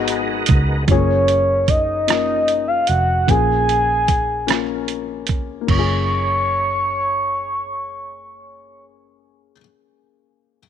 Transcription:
Already playing: fingered electric bass G#1, tonewheel organ G#3 B3 D#4 F#4 A#4, grand piano B3 D#4 F#4 G#4 A#4
0.08 closed hi-hat
0.46 fingered electric bass C#2, kick, closed hi-hat
0.87 fingered electric bass F#1, grand piano G#3 C#4 F4, soft synth lead C#5, kick, closed hi-hat
0.92 grand piano A#3 G#4
1.28 closed hi-hat
1.68 soft synth lead D#5, kick, closed hi-hat
2.07 grand piano A#3 C#4 F4, cross-stick, closed hi-hat
2.12 grand piano A#4
2.48 closed hi-hat
2.68 soft synth lead F5
2.87 fingered electric bass F1, soft synth lead F#5, closed hi-hat
3.27 fingered electric bass A#1, grand piano A#3 C#4 F4, soft synth lead G#5, kick, closed hi-hat
3.31 grand piano G#4
3.69 closed hi-hat
4.08 kick, closed hi-hat
4.47 grand piano A#3 C#4 F4, cross-stick, closed hi-hat
4.51 grand piano A#4
4.88 closed hi-hat
5.27 fingered electric bass C#2, kick, closed hi-hat
5.61 grand piano A#3
5.67 fingered electric bass F#1, grand piano C#4, soft synth lead C#6, kick, crash
5.73 grand piano F4
5.79 grand piano G#4

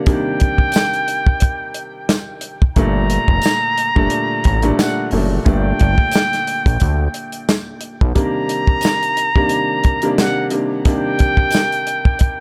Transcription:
0.06 upright piano C3 D#3 G3 A#3 D4, muted trumpet G5, kick, closed hi-hat
0.40 kick, closed hi-hat
0.58 kick
0.72 snare, closed hi-hat, tambourine
0.93 closed hi-hat
1.08 closed hi-hat
1.27 kick
1.40 kick, closed hi-hat
1.74 closed hi-hat
2.09 snare, closed hi-hat, tambourine
2.41 closed hi-hat
2.62 kick
2.75 analog synth bass G1, upright piano A#2 D3 G3 A3 D4, muted trumpet A#5, kick, closed hi-hat
3.10 closed hi-hat
3.28 analog synth bass F1, kick
3.42 closed hi-hat, tambourine
3.46 snare
3.78 closed hi-hat
3.95 analog synth bass G1, upright piano A#2 D3 G3 A3 D4, kick
4.10 closed hi-hat
4.44 analog synth bass A1, kick, closed hi-hat
4.62 upright piano A#2 D3 G3 A3 D4, closed hi-hat
4.79 muted trumpet F#5, snare, closed hi-hat, tambourine
5.11 analog synth bass F#1, upright piano A#2 D3 G3 A3 D4, open hi-hat
5.45 analog synth bass G1, upright piano A#2 D3 G3 A3 D4, muted trumpet G5, kick, closed hi-hat
5.79 analog synth bass G1, kick, closed hi-hat
5.98 kick
6.11 closed hi-hat, tambourine
6.15 snare
6.33 snare, closed hi-hat
6.47 closed hi-hat
6.66 analog synth bass A#1, kick, closed hi-hat
6.80 analog synth bass D2, kick, closed hi-hat
7.14 closed hi-hat
7.32 closed hi-hat
7.49 snare, closed hi-hat, tambourine
7.81 closed hi-hat
8.01 analog synth bass B1, kick
8.15 upright piano C3 D#3 G3 A#3 D4, muted trumpet A#5, kick, closed hi-hat
8.49 closed hi-hat
8.67 kick
8.81 snare, closed hi-hat, tambourine
9.03 closed hi-hat
9.17 closed hi-hat
9.35 upright piano C3 D#3 G3 A#3 D4, kick
9.49 closed hi-hat
9.84 kick, closed hi-hat
10.02 upright piano C3 D#3 G3 A#3 D4, closed hi-hat
10.18 muted trumpet F#5, snare, closed hi-hat, tambourine
10.50 upright piano C3 D#3 G3 A#3 D4, closed hi-hat
10.85 upright piano C3 D#3 G3 A#3 D4, muted trumpet G5, kick, closed hi-hat
11.19 kick, closed hi-hat
11.37 kick
11.51 closed hi-hat, tambourine
11.55 snare
11.72 closed hi-hat
11.87 closed hi-hat
12.05 kick
12.19 kick, closed hi-hat

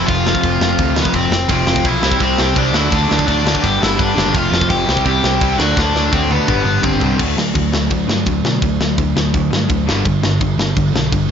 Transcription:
Already playing: overdriven electric guitar F2 C3 F3 A3 C4 F4
0.06 picked electric bass F1, overdriven electric guitar F4, kick, crash
0.27 snare
0.35 kick
0.43 picked electric bass F1, kick, crash
0.61 picked electric bass F1, snare
0.78 picked electric bass D2, distorted electric guitar F2 C3 F3, kick, crash
0.96 distorted electric guitar F2 C3 F3, snare
1.00 overdriven electric guitar B3
1.05 kick
1.12 picked electric bass F1, overdriven electric guitar F2 C3 F3 C4, kick, crash
1.31 picked electric bass F1, snare
1.48 picked electric bass F1, overdriven electric guitar F2 C3 F3 A3 C4 F4, kick, crash
1.67 picked electric bass F1, overdriven electric guitar F2 C3 F3 A3 C4 F4, snare
1.76 kick
1.85 picked electric bass B1, overdriven electric guitar F2 C3 F3 A3 C4 E4 F4, kick, crash
2.02 picked electric bass C2, overdriven electric guitar C3 G3 C4 E4, snare
2.12 kick
2.19 picked electric bass C2, overdriven electric guitar C3 G3 C4 E4, kick, crash
2.38 picked electric bass C2, overdriven electric guitar C3 G3 C4 E4, snare
2.56 picked electric bass C2, overdriven electric guitar C3 G3 C4 D4 E4, kick, crash
2.73 picked electric bass D2, overdriven electric guitar D3 F#3 A3 D4 E4, snare
2.90 picked electric bass D2, overdriven electric guitar D3 F#3 A3 D4, kick, crash
3.08 picked electric bass D2, overdriven electric guitar D3 F#3 A3 D4, snare
3.19 kick
3.26 picked electric bass D2, overdriven electric guitar D3 F#3 A3 D4, kick, crash
3.42 overdriven electric guitar D3 F#3 A3 D4
3.47 snare
3.55 kick
3.60 picked electric bass G1, overdriven electric guitar G2 D3 G3 B3 D4 G4, kick
3.64 overdriven electric guitar G3, crash
3.78 overdriven electric guitar G2 D3 G3 B3 D4 E4
3.83 picked electric bass G1, snare
3.96 picked electric bass G1, overdriven electric guitar G2 D3 G3 B3 D4, kick
4.00 crash
4.14 picked electric bass F#1, overdriven electric guitar G2 D3 G3 B3 D4
4.18 overdriven electric guitar G2, snare
4.32 picked electric bass F1, overdriven electric guitar F2 C3 F3 A3 C4 F4, kick, crash
4.50 picked electric bass F1, overdriven electric guitar F2 C3 F3 A3 C4
4.54 snare
4.61 kick
4.68 picked electric bass F1, overdriven electric guitar F2 C3 F3 A3 C4 G4, kick, crash
4.86 picked electric bass C2, overdriven electric guitar C3 G3 C4 E4, snare
4.97 kick
5.05 picked electric bass C2, overdriven electric guitar C3 G3 C4 E4 G4, kick, crash
5.24 picked electric bass C2, overdriven electric guitar C3 G3 C4 E4, snare
5.41 picked electric bass C2, overdriven electric guitar C3 G3 C4 E4, kick, crash
5.58 picked electric bass D2, overdriven electric guitar D3 F#3 A3 D4 F#4, snare
5.77 picked electric bass D2, overdriven electric guitar D3 F#3 A3 D4, kick, snare
5.95 picked electric bass D2, overdriven electric guitar D3 F#3 A3 D4, snare
6.12 picked electric bass D2, overdriven electric guitar D3 F#3 A3 C4 D4, kick
6.30 overdriven electric guitar D3 F#3 A3 B3 D4, high tom
6.48 picked electric bass G1, overdriven electric guitar G2 D3 G3 B3 D4, kick, mid tom
6.64 picked electric bass G1, overdriven electric guitar G2 D3 G3 B3 D4
6.82 picked electric bass G1, overdriven electric guitar G2 D3 G3 B3 C4 D4, kick, floor tom
7.00 picked electric bass C2, overdriven electric guitar G2 D3 G3 B3 D4, floor tom
7.16 picked electric bass D2, overdriven electric guitar D3 F#3 A3, distorted electric guitar D4, kick, crash
7.36 picked electric bass D2, overdriven electric guitar D3 F#3, distorted electric guitar A3, snare
7.54 picked electric bass D2, overdriven electric guitar D3 F#3, distorted electric guitar A3, kick, crash
7.72 picked electric bass D2, overdriven electric guitar D3 F#3, distorted electric guitar A3, snare
7.90 picked electric bass D2, overdriven electric guitar D3 F#3, distorted electric guitar A3, kick, crash
8.08 picked electric bass G2, overdriven electric guitar D3 F#3, distorted electric guitar A3, snare
8.26 picked electric bass D2, overdriven electric guitar D3 F#3, distorted electric guitar A3, kick, crash
8.44 picked electric bass B2, overdriven electric guitar D3 F#3, distorted electric guitar A3, snare
8.62 picked electric bass D2, overdriven electric guitar D3 F#3, distorted electric guitar A3, kick, crash
8.80 picked electric bass D2, overdriven electric guitar D3 F#3, distorted electric guitar A3, snare
8.98 picked electric bass D2, overdriven electric guitar D3 F#3, distorted electric guitar A3, kick, crash
9.16 picked electric bass D2, overdriven electric guitar D3 F#3, distorted electric guitar A3, snare
9.34 picked electric bass D2, overdriven electric guitar D3 F#3, distorted electric guitar A3, kick, crash
9.50 picked electric bass G2, overdriven electric guitar D3 F#3, distorted electric guitar A3, snare
9.69 picked electric bass D2, overdriven electric guitar D3 F#3, distorted electric guitar A3, kick, crash
9.87 picked electric bass G1, overdriven electric guitar G2 D3 G3, snare
10.05 picked electric bass G1, overdriven electric guitar G2 D3, kick, crash
10.23 picked electric bass G1, overdriven electric guitar G2 D3, snare
10.41 picked electric bass G1, overdriven electric guitar G2 D3, kick, crash
10.58 picked electric bass G1, overdriven electric guitar G2 D3, snare
10.76 picked electric bass G1, overdriven electric guitar G2 D3, kick, crash
10.93 picked electric bass B1, overdriven electric guitar G2 D3, snare
11.12 picked electric bass G1, overdriven electric guitar G2 D3, kick, crash

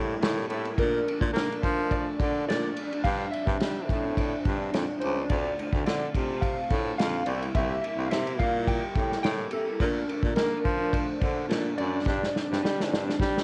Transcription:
Already playing: baritone saxophone A2, clean electric guitar C3 G3 A#3 E4
0.19 baritone saxophone A2, clean electric guitar C3 G3 A#3 E4, snare, ride
0.48 baritone saxophone A2, clean electric guitar C3 G3 A#3 E4, ride
0.53 synth keys A4
0.64 clean electric guitar G3 A#3 E4, ride
0.77 clean electric guitar A#2 F3 A3 D4, baritone saxophone A#2, synth keys A#4, kick, ride
1.06 clean electric guitar A#2 F3 A3 D4, ride
1.21 baritone saxophone A#2, kick
1.33 clean electric guitar A#2 F3 A3, baritone saxophone A#3, synth keys A#4, ride
1.37 clean electric guitar D4, snare
1.48 clean electric guitar A3 D4, ride
1.52 clean electric guitar F3
1.61 clean electric guitar A#2 F3 A3 D4, baritone saxophone F3, kick, ride
1.77 clean electric guitar F3 A3 D4
1.91 synth keys D5, kick, ride
2.20 clean electric guitar A#2 F3 A3 D4, baritone saxophone D3, kick, ride
2.47 clean electric guitar A#2 F3 A3 D4, baritone saxophone A#2, synth keys D5, snare, ride
2.77 clean electric guitar A#2 F3 A3 D4, ride
2.92 clean electric guitar F3 A3 D4, ride
3.04 baritone saxophone G2, clean electric guitar G2 F3 C4, synth keys F5, kick, ride
3.08 clean electric guitar D4
3.31 clean electric guitar G2 F3 C4, synth keys E5, ride
3.36 clean electric guitar D4
3.47 baritone saxophone G2, kick
3.60 clean electric guitar G2 F3 C4 D4, baritone saxophone G3, snare, ride
3.78 clean electric guitar F3 C4 D4
3.89 clean electric guitar G2 F3 C4, baritone saxophone A2, kick, ride
3.94 clean electric guitar D4
4.05 clean electric guitar F3 C4 D4
4.17 kick, ride
4.45 baritone saxophone G2, clean electric guitar G2 F3 C4, kick, ride
4.50 clean electric guitar D4
4.72 baritone saxophone F2, clean electric guitar G2 F3 C4 D4, snare, ride
5.00 baritone saxophone C#2, clean electric guitar G2 F3, synth keys C5, ride
5.04 clean electric guitar C4 D4
5.18 clean electric guitar F3 C4 D4
5.29 baritone saxophone D2, clean electric guitar D3 A3 C4 F4, synth keys D5, kick, ride
5.58 clean electric guitar D3 A3 C4, ride
5.62 clean electric guitar F4
5.72 baritone saxophone D2, kick
5.86 baritone saxophone D3, clean electric guitar D3 A3 C4 F4, synth keys D5, snare, ride
6.01 clean electric guitar A3 C4 F4
6.14 baritone saxophone C3, clean electric guitar D3 A3 C4 F4, kick, ride
6.30 clean electric guitar A3 C4 F4
6.41 synth keys F5, kick, ride
6.70 baritone saxophone A2, clean electric guitar D3 A3 C4, kick, ride
6.75 clean electric guitar F4
6.98 baritone saxophone F2, clean electric guitar D3 A3 C4, synth keys F5, snare, ride
7.02 clean electric guitar F4
7.26 baritone saxophone C2, clean electric guitar C3 G3, synth keys D5, ride
7.30 clean electric guitar A#3 E4
7.42 clean electric guitar G3 A#3 E4, ride
7.55 baritone saxophone C2, clean electric guitar C3 G3 A#3 E4, synth keys E5, kick, ride
7.82 clean electric guitar C3 G3, synth keys E5, ride
7.86 clean electric guitar A#3 E4
7.98 baritone saxophone C2
8.05 synth keys F5
8.10 clean electric guitar C3 G3 A#3 E4, baritone saxophone C3, synth keys E5, snare, ride
8.27 clean electric guitar G3 A#3 E4, ride
8.38 baritone saxophone A#2, clean electric guitar C3 G3 A#3 E4, synth keys F5, kick, ride
8.54 clean electric guitar G3 A#3 E4
8.67 synth keys G5, kick, ride
8.95 baritone saxophone A2, clean electric guitar C3 G3 A#3 E4, kick, ride
9.12 snare
9.23 baritone saxophone A2, clean electric guitar C3 G3 A#3 E4, synth keys G5, snare, ride
9.51 clean electric guitar C3 G3 A#3, synth keys A4, ride
9.56 clean electric guitar E4
9.66 clean electric guitar G3 A#3 E4
9.80 clean electric guitar A#2 F3 A3 D4, baritone saxophone A#2, synth keys A#4, kick, ride
10.08 clean electric guitar A#2 F3 A3 D4, ride
10.23 baritone saxophone A#2, kick
10.36 clean electric guitar A#2 F3 A3 D4, baritone saxophone A#3, synth keys A#4, snare, ride
10.50 clean electric guitar F3 A3 D4
10.63 clean electric guitar A#2 F3 A3 D4, baritone saxophone F3, kick, ride
10.77 clean electric guitar A3 D4
10.82 clean electric guitar F3
10.93 synth keys C5, kick, ride
11.20 clean electric guitar A#2 F3 A3 D4, baritone saxophone D3, kick, ride
11.49 baritone saxophone A#2, clean electric guitar A#2 F3 A3 D4, snare, ride
11.76 baritone saxophone F#2, clean electric guitar A#2 F3 A3, synth keys D5, ride
11.81 clean electric guitar D4
11.92 clean electric guitar F3 A3 D4
12.06 baritone saxophone G2, clean electric guitar G2 F3 C4 D4, kick, snare
12.23 snare
12.34 clean electric guitar G2 F3 C4 D4, snare
12.51 baritone saxophone G2, snare
12.62 clean electric guitar G2 F3 C4 D4, baritone saxophone G3, snare
12.76 clean electric guitar F3 C4 D4, snare
12.89 clean electric guitar G2 F3 C4 D4, baritone saxophone G2
12.94 snare
13.05 clean electric guitar F3 C4 D4
13.09 snare
13.20 baritone saxophone G3, kick, snare
13.37 snare

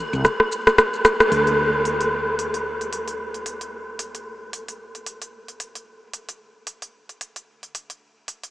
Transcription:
0.13 fretless electric bass C2, shaker
0.25 cross-stick, shaker
0.40 cross-stick
0.52 shaker
0.67 cross-stick, shaker
0.78 cross-stick, shaker
0.93 shaker
1.05 cross-stick, shaker
1.20 cross-stick, shaker
1.32 fretless electric bass D2, open hi-hat
1.47 open hi-hat
1.85 open hi-hat
2.01 open hi-hat
2.39 open hi-hat
2.54 open hi-hat
2.81 open hi-hat
2.93 open hi-hat
3.08 open hi-hat
3.34 open hi-hat
3.46 open hi-hat
3.61 open hi-hat
3.99 open hi-hat
4.15 open hi-hat
4.53 open hi-hat
4.68 open hi-hat
4.95 open hi-hat
5.06 open hi-hat
5.22 open hi-hat
5.48 open hi-hat
5.60 open hi-hat
5.75 open hi-hat
6.14 open hi-hat
6.29 open hi-hat
6.67 open hi-hat
6.82 open hi-hat
7.09 open hi-hat
7.21 open hi-hat
7.36 open hi-hat
7.63 open hi-hat
7.75 open hi-hat
7.90 open hi-hat
8.28 open hi-hat
8.44 open hi-hat

